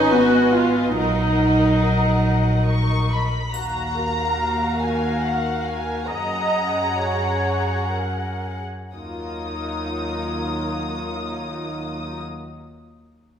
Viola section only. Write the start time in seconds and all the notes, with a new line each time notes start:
Already playing: D#4
0.12 F#4
0.54 F4
0.97 D#4
3.54 F#4
3.96 A#4
6.09 D#5
6.98 C#5
7.93 A#4
8.93 F#3 D#4